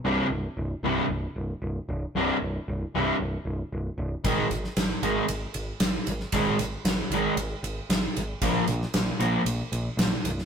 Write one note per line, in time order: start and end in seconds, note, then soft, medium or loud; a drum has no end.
0.05 0.20 C1 medium
0.05 0.25 C2 medium
0.05 0.26 G2 medium
0.05 0.26 C3 loud
0.30 0.46 C1 medium
0.57 0.73 C1 medium
0.83 0.99 C1 medium
0.83 1.05 C2 medium
0.83 1.05 G2 medium
0.83 1.05 C3 loud
1.09 1.25 C1 medium
1.36 1.52 C1 medium
1.62 1.77 C1 medium
1.89 2.04 C1 medium
2.15 2.30 C1 medium
2.15 2.36 C2 medium
2.15 2.36 G2 medium
2.15 2.36 C3 medium
2.42 2.57 C1 medium
2.68 2.83 C1 medium
2.95 3.10 C1 medium
2.95 3.15 C2 medium
2.95 3.15 G2 medium
2.95 3.15 C3 medium
3.20 3.35 C1 medium
3.45 3.61 C1 medium
3.72 3.88 C1 medium
3.98 4.13 C1 medium
4.24 4.40 G#1 medium
4.24 4.45 G#2 medium
4.24 4.46 D#3 medium
4.24 4.46 G#3 loud
4.24 kick loud
4.24 ride medium
4.50 4.66 G#1 medium
4.50 ride medium
4.64 snare soft
4.76 4.92 G#1 medium
4.76 snare medium
4.76 ride medium
5.02 5.18 G#1 medium
5.02 5.24 G#2 medium
5.02 5.24 D#3 medium
5.02 5.24 G#3 loud
5.02 ride medium
5.28 5.44 G#1 medium
5.28 ride medium
5.54 5.70 G#1 medium
5.54 ride medium
5.80 5.96 G#1 medium
5.80 snare loud
5.80 ride loud
6.07 6.23 G#1 medium
6.07 ride medium
6.20 snare soft
6.32 6.49 G#1 loud
6.32 6.54 G#2 medium
6.32 6.54 D#3 medium
6.32 6.55 G#3 medium
6.32 kick loud
6.32 ride loud
6.59 6.75 G#1 medium
6.59 ride medium
6.85 7.01 G#1 medium
6.85 snare loud
6.85 ride medium
7.10 7.26 G#1 medium
7.10 7.33 G#2 medium
7.10 7.33 D#3 medium
7.10 7.34 G#3 medium
7.10 ride medium
7.36 7.53 G#1 loud
7.36 ride medium
7.63 7.79 G#1 medium
7.63 ride medium
7.89 8.05 G#1 medium
7.89 snare loud
7.89 ride medium
8.17 8.32 G#1 medium
8.17 ride medium
8.41 8.57 A#1 medium
8.41 8.63 A#2 medium
8.41 8.63 F3 medium
8.41 8.64 A#3 loud
8.41 kick loud
8.41 ride medium
8.68 8.84 A#1 medium
8.68 ride medium
8.82 snare soft
8.94 9.10 A#1 medium
8.94 snare loud
8.94 ride medium
9.19 9.36 A#1 medium
9.19 9.41 A#2 medium
9.19 9.41 F3 medium
9.19 9.41 A#3 loud
9.19 ride medium
9.45 9.61 A#1 medium
9.45 ride medium
9.72 9.88 A#1 medium
9.72 ride medium
9.97 10.13 A#1 medium
9.97 snare loud
9.97 ride medium
10.24 10.40 C1 medium
10.24 ride medium
10.38 snare soft